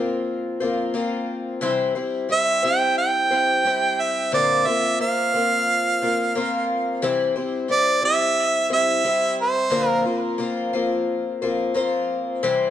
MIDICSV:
0, 0, Header, 1, 3, 480
1, 0, Start_track
1, 0, Tempo, 674157
1, 1158, Time_signature, 4, 2, 24, 8
1, 9043, End_track
2, 0, Start_track
2, 0, Title_t, "Harmonica"
2, 0, Program_c, 0, 22
2, 1651, Note_on_c, 0, 76, 97
2, 1889, Note_on_c, 0, 79, 102
2, 1900, Note_off_c, 0, 76, 0
2, 2119, Note_off_c, 0, 79, 0
2, 2124, Note_on_c, 0, 79, 94
2, 2851, Note_on_c, 0, 76, 78
2, 2862, Note_off_c, 0, 79, 0
2, 3085, Note_off_c, 0, 76, 0
2, 3091, Note_on_c, 0, 74, 82
2, 3322, Note_on_c, 0, 76, 87
2, 3333, Note_off_c, 0, 74, 0
2, 3561, Note_off_c, 0, 76, 0
2, 3564, Note_on_c, 0, 77, 81
2, 4734, Note_off_c, 0, 77, 0
2, 5492, Note_on_c, 0, 74, 88
2, 5710, Note_off_c, 0, 74, 0
2, 5733, Note_on_c, 0, 76, 100
2, 6178, Note_off_c, 0, 76, 0
2, 6218, Note_on_c, 0, 76, 92
2, 6661, Note_off_c, 0, 76, 0
2, 6705, Note_on_c, 0, 72, 68
2, 7040, Note_off_c, 0, 72, 0
2, 7040, Note_on_c, 0, 70, 68
2, 7144, Note_off_c, 0, 70, 0
2, 9043, End_track
3, 0, Start_track
3, 0, Title_t, "Twelve-string acoustic guitar"
3, 0, Program_c, 1, 25
3, 0, Note_on_c, 1, 58, 46
3, 0, Note_on_c, 1, 60, 46
3, 0, Note_on_c, 1, 65, 57
3, 0, Note_on_c, 1, 72, 51
3, 427, Note_off_c, 1, 72, 0
3, 429, Note_off_c, 1, 65, 0
3, 430, Note_on_c, 1, 72, 54
3, 436, Note_off_c, 1, 60, 0
3, 437, Note_on_c, 1, 65, 53
3, 439, Note_off_c, 1, 58, 0
3, 439, Note_on_c, 1, 60, 49
3, 449, Note_on_c, 1, 58, 43
3, 659, Note_off_c, 1, 58, 0
3, 665, Note_off_c, 1, 60, 0
3, 667, Note_on_c, 1, 58, 58
3, 669, Note_off_c, 1, 65, 0
3, 673, Note_on_c, 1, 60, 58
3, 674, Note_off_c, 1, 72, 0
3, 677, Note_on_c, 1, 65, 70
3, 684, Note_on_c, 1, 72, 66
3, 1147, Note_on_c, 1, 48, 86
3, 1151, Note_on_c, 1, 52, 79
3, 1152, Note_off_c, 1, 60, 0
3, 1153, Note_off_c, 1, 58, 0
3, 1154, Note_off_c, 1, 72, 0
3, 1155, Note_on_c, 1, 60, 88
3, 1156, Note_off_c, 1, 65, 0
3, 1156, Note_on_c, 1, 55, 78
3, 1157, Note_on_c, 1, 72, 87
3, 1159, Note_on_c, 1, 64, 89
3, 1380, Note_off_c, 1, 72, 0
3, 1383, Note_off_c, 1, 64, 0
3, 1387, Note_off_c, 1, 60, 0
3, 1389, Note_on_c, 1, 72, 50
3, 1390, Note_off_c, 1, 55, 0
3, 1392, Note_on_c, 1, 64, 49
3, 1393, Note_off_c, 1, 48, 0
3, 1395, Note_off_c, 1, 52, 0
3, 1396, Note_on_c, 1, 60, 46
3, 1399, Note_on_c, 1, 55, 40
3, 1620, Note_off_c, 1, 55, 0
3, 1626, Note_off_c, 1, 60, 0
3, 1628, Note_on_c, 1, 55, 56
3, 1633, Note_off_c, 1, 64, 0
3, 1634, Note_off_c, 1, 72, 0
3, 1634, Note_on_c, 1, 60, 58
3, 1642, Note_on_c, 1, 64, 54
3, 1649, Note_on_c, 1, 72, 56
3, 1862, Note_off_c, 1, 72, 0
3, 1869, Note_off_c, 1, 64, 0
3, 1871, Note_on_c, 1, 72, 59
3, 1874, Note_off_c, 1, 55, 0
3, 1874, Note_off_c, 1, 60, 0
3, 1878, Note_on_c, 1, 64, 50
3, 1883, Note_on_c, 1, 60, 46
3, 1884, Note_on_c, 1, 55, 40
3, 2352, Note_off_c, 1, 72, 0
3, 2354, Note_off_c, 1, 64, 0
3, 2355, Note_on_c, 1, 72, 54
3, 2359, Note_off_c, 1, 60, 0
3, 2362, Note_off_c, 1, 55, 0
3, 2362, Note_on_c, 1, 60, 45
3, 2363, Note_on_c, 1, 64, 47
3, 2371, Note_on_c, 1, 55, 44
3, 2586, Note_off_c, 1, 55, 0
3, 2595, Note_off_c, 1, 60, 0
3, 2595, Note_on_c, 1, 55, 57
3, 2597, Note_off_c, 1, 72, 0
3, 2599, Note_off_c, 1, 64, 0
3, 2604, Note_on_c, 1, 60, 59
3, 2608, Note_on_c, 1, 64, 57
3, 2610, Note_on_c, 1, 72, 68
3, 3074, Note_on_c, 1, 46, 65
3, 3075, Note_on_c, 1, 50, 80
3, 3077, Note_off_c, 1, 55, 0
3, 3079, Note_off_c, 1, 64, 0
3, 3080, Note_off_c, 1, 60, 0
3, 3081, Note_on_c, 1, 65, 70
3, 3083, Note_on_c, 1, 58, 70
3, 3083, Note_on_c, 1, 60, 71
3, 3084, Note_off_c, 1, 72, 0
3, 3087, Note_on_c, 1, 72, 79
3, 3311, Note_off_c, 1, 72, 0
3, 3313, Note_off_c, 1, 65, 0
3, 3317, Note_off_c, 1, 46, 0
3, 3317, Note_off_c, 1, 50, 0
3, 3319, Note_on_c, 1, 72, 41
3, 3321, Note_off_c, 1, 58, 0
3, 3321, Note_off_c, 1, 60, 0
3, 3322, Note_on_c, 1, 65, 42
3, 3329, Note_on_c, 1, 60, 37
3, 3332, Note_on_c, 1, 58, 35
3, 3547, Note_off_c, 1, 58, 0
3, 3553, Note_off_c, 1, 60, 0
3, 3555, Note_off_c, 1, 65, 0
3, 3556, Note_on_c, 1, 58, 54
3, 3559, Note_off_c, 1, 72, 0
3, 3561, Note_on_c, 1, 60, 57
3, 3564, Note_on_c, 1, 65, 55
3, 3570, Note_on_c, 1, 72, 59
3, 3793, Note_off_c, 1, 72, 0
3, 3797, Note_off_c, 1, 65, 0
3, 3798, Note_off_c, 1, 58, 0
3, 3800, Note_off_c, 1, 60, 0
3, 3802, Note_on_c, 1, 72, 47
3, 3805, Note_on_c, 1, 65, 53
3, 3811, Note_on_c, 1, 60, 48
3, 3815, Note_on_c, 1, 58, 43
3, 4281, Note_off_c, 1, 72, 0
3, 4282, Note_off_c, 1, 65, 0
3, 4284, Note_on_c, 1, 72, 56
3, 4287, Note_off_c, 1, 58, 0
3, 4287, Note_off_c, 1, 60, 0
3, 4290, Note_on_c, 1, 60, 41
3, 4290, Note_on_c, 1, 65, 49
3, 4295, Note_on_c, 1, 58, 44
3, 4514, Note_off_c, 1, 58, 0
3, 4522, Note_off_c, 1, 60, 0
3, 4522, Note_off_c, 1, 72, 0
3, 4523, Note_on_c, 1, 58, 69
3, 4525, Note_off_c, 1, 65, 0
3, 4531, Note_on_c, 1, 60, 62
3, 4537, Note_on_c, 1, 65, 66
3, 4538, Note_on_c, 1, 72, 74
3, 4998, Note_off_c, 1, 58, 0
3, 4999, Note_on_c, 1, 48, 75
3, 5001, Note_on_c, 1, 52, 80
3, 5001, Note_on_c, 1, 55, 84
3, 5003, Note_off_c, 1, 60, 0
3, 5006, Note_on_c, 1, 60, 77
3, 5007, Note_off_c, 1, 72, 0
3, 5008, Note_off_c, 1, 65, 0
3, 5010, Note_on_c, 1, 72, 96
3, 5011, Note_on_c, 1, 64, 93
3, 5229, Note_off_c, 1, 72, 0
3, 5234, Note_off_c, 1, 64, 0
3, 5238, Note_on_c, 1, 72, 59
3, 5239, Note_off_c, 1, 48, 0
3, 5240, Note_off_c, 1, 52, 0
3, 5240, Note_off_c, 1, 55, 0
3, 5241, Note_off_c, 1, 60, 0
3, 5242, Note_on_c, 1, 64, 50
3, 5250, Note_on_c, 1, 60, 47
3, 5251, Note_on_c, 1, 55, 44
3, 5461, Note_off_c, 1, 55, 0
3, 5470, Note_off_c, 1, 60, 0
3, 5470, Note_on_c, 1, 55, 56
3, 5471, Note_off_c, 1, 64, 0
3, 5479, Note_off_c, 1, 72, 0
3, 5479, Note_on_c, 1, 60, 52
3, 5480, Note_on_c, 1, 64, 58
3, 5487, Note_on_c, 1, 72, 61
3, 5697, Note_off_c, 1, 72, 0
3, 5705, Note_on_c, 1, 72, 49
3, 5708, Note_off_c, 1, 60, 0
3, 5709, Note_off_c, 1, 64, 0
3, 5715, Note_off_c, 1, 55, 0
3, 5717, Note_on_c, 1, 60, 44
3, 5717, Note_on_c, 1, 64, 47
3, 5726, Note_on_c, 1, 55, 42
3, 6189, Note_off_c, 1, 64, 0
3, 6192, Note_off_c, 1, 72, 0
3, 6194, Note_on_c, 1, 72, 55
3, 6198, Note_off_c, 1, 60, 0
3, 6198, Note_on_c, 1, 64, 47
3, 6200, Note_off_c, 1, 55, 0
3, 6201, Note_on_c, 1, 60, 38
3, 6208, Note_on_c, 1, 55, 39
3, 6427, Note_off_c, 1, 55, 0
3, 6433, Note_off_c, 1, 60, 0
3, 6436, Note_on_c, 1, 55, 62
3, 6437, Note_off_c, 1, 64, 0
3, 6437, Note_off_c, 1, 72, 0
3, 6441, Note_on_c, 1, 60, 64
3, 6446, Note_on_c, 1, 64, 65
3, 6449, Note_on_c, 1, 72, 63
3, 6907, Note_on_c, 1, 46, 67
3, 6908, Note_on_c, 1, 50, 71
3, 6911, Note_off_c, 1, 55, 0
3, 6914, Note_off_c, 1, 60, 0
3, 6914, Note_on_c, 1, 58, 72
3, 6916, Note_off_c, 1, 64, 0
3, 6917, Note_off_c, 1, 72, 0
3, 6917, Note_on_c, 1, 60, 77
3, 6918, Note_on_c, 1, 65, 80
3, 6920, Note_on_c, 1, 72, 72
3, 7149, Note_off_c, 1, 72, 0
3, 7153, Note_off_c, 1, 65, 0
3, 7154, Note_off_c, 1, 46, 0
3, 7154, Note_off_c, 1, 50, 0
3, 7157, Note_off_c, 1, 58, 0
3, 7158, Note_on_c, 1, 72, 42
3, 7159, Note_off_c, 1, 60, 0
3, 7162, Note_on_c, 1, 65, 45
3, 7168, Note_on_c, 1, 60, 41
3, 7170, Note_on_c, 1, 58, 44
3, 7382, Note_off_c, 1, 58, 0
3, 7390, Note_on_c, 1, 58, 67
3, 7392, Note_off_c, 1, 60, 0
3, 7394, Note_off_c, 1, 65, 0
3, 7399, Note_off_c, 1, 72, 0
3, 7401, Note_on_c, 1, 60, 58
3, 7403, Note_on_c, 1, 65, 71
3, 7407, Note_on_c, 1, 72, 68
3, 7633, Note_off_c, 1, 72, 0
3, 7635, Note_off_c, 1, 58, 0
3, 7641, Note_off_c, 1, 60, 0
3, 7641, Note_on_c, 1, 72, 59
3, 7642, Note_off_c, 1, 65, 0
3, 7651, Note_on_c, 1, 65, 58
3, 7654, Note_on_c, 1, 58, 50
3, 7655, Note_on_c, 1, 60, 47
3, 8125, Note_off_c, 1, 65, 0
3, 8127, Note_off_c, 1, 58, 0
3, 8127, Note_off_c, 1, 72, 0
3, 8130, Note_on_c, 1, 72, 61
3, 8135, Note_on_c, 1, 65, 51
3, 8139, Note_off_c, 1, 60, 0
3, 8142, Note_on_c, 1, 60, 44
3, 8143, Note_on_c, 1, 58, 45
3, 8353, Note_off_c, 1, 58, 0
3, 8359, Note_off_c, 1, 60, 0
3, 8360, Note_off_c, 1, 65, 0
3, 8361, Note_on_c, 1, 58, 64
3, 8365, Note_off_c, 1, 72, 0
3, 8367, Note_on_c, 1, 60, 68
3, 8369, Note_on_c, 1, 65, 66
3, 8377, Note_on_c, 1, 72, 80
3, 8841, Note_off_c, 1, 58, 0
3, 8845, Note_off_c, 1, 65, 0
3, 8849, Note_on_c, 1, 48, 94
3, 8849, Note_on_c, 1, 52, 80
3, 8851, Note_on_c, 1, 55, 91
3, 8852, Note_off_c, 1, 60, 0
3, 8854, Note_on_c, 1, 60, 82
3, 8855, Note_off_c, 1, 72, 0
3, 8856, Note_on_c, 1, 64, 84
3, 8857, Note_on_c, 1, 72, 89
3, 9043, Note_off_c, 1, 48, 0
3, 9043, Note_off_c, 1, 52, 0
3, 9043, Note_off_c, 1, 55, 0
3, 9043, Note_off_c, 1, 60, 0
3, 9043, Note_off_c, 1, 64, 0
3, 9043, Note_off_c, 1, 72, 0
3, 9043, End_track
0, 0, End_of_file